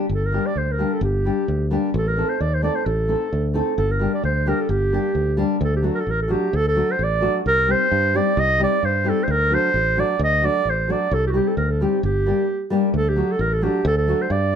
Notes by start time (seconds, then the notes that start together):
0.09 G1
0.13 A4
0.26 A#4
0.32 G3 A#3 D4 G4
0.46 D5
0.56 D2 C5
0.72 A#4
0.78 G3 A#3 D4 G4
0.93 A4
1.01 G1 G4
1.25 G3 A#3 D4 G4
1.48 D2
1.71 G3 A#3 D4 G4
1.94 A1 A4
2.08 A#4
2.17 A3 C4 D#4 A4
2.29 C5
2.40 D#2 D5
2.54 C5
2.62 A3 C4 D#4 A4 D5
2.75 C5
2.86 A1 A4
3.08 A3 C4 D#4 A4
3.33 D2
3.54 A3 C4 D#4 A4
3.78 G1 A4
3.91 A#4
3.99 G3 A#3 D4 G4
4.14 D5
4.24 D2 C5
4.46 G3 A#3 D4 G4 A#4
4.61 A4
4.69 G1 G4
4.92 G3 A#3 D4 G4
5.15 D2
5.37 G3 A#3 D4 G4
5.61 D2 A4
5.76 G4
5.82 F#3 A3 D4 F#4
5.95 A#4
6.00 A4
6.07 A1 A#4
6.22 A4
6.28 F#3 A3 D4 F#4 G4
6.53 D2 A4
6.68 A4
6.75 F#3 A3 D4 F#4
6.91 C5
6.99 A1
7.04 D5
7.21 F#3 A3 D4 F#4
7.46 C2 A#4
7.67 G3 C4 D#4 G4
7.71 C5
7.92 G2
8.14 G3 C4 D#4 G4 D5
8.37 C2 D#5
8.59 G3 C4 D#4 G4
8.63 D5
8.83 G2 C5
9.04 G3 C4 D#4 G4
9.09 A4
9.23 C5
9.28 D2 A#4
9.50 F#3 A3 D4 F#4
9.54 C5
9.74 A1
9.96 F#3 A3 D4 F#4
10.00 D5
10.19 D2
10.24 D#5
10.42 F#3 A3 D4 F#4 D5
10.65 A1
10.70 C5
10.88 F#3 A3 D4 F#4 D5
11.11 C2 A4
11.27 F#4 G4
11.33 G3 C4 D#4 G4
11.48 A4
11.57 D2 A#4
11.71 A4
11.80 G3 C4 D#4 G4
12.03 G1 G4
12.26 G3 A#3 D4 G4
12.70 G3 A#3 D4 G4
12.94 D2 A4
13.09 G4
13.16 F#3 A3 D4 F#4
13.32 A4
13.39 A1 A#4
13.53 A4
13.61 F#3 A3 D4 F#4 G4
13.85 D2 A4
13.97 A4
14.08 F#3 A3 D4 F#4
14.21 C5
14.30 G2 D5